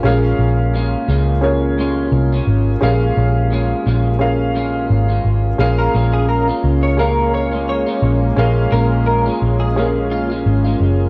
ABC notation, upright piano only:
X:1
M:4/4
L:1/8
Q:"Swing 16ths" 1/4=86
K:Bbm
V:1 name="Upright piano"
[DABf]4 [DABd]4 | [DABf]4 [DABf]4 | [DABf]4 [DABf]4 | [DABf]4 [DABf]4 |]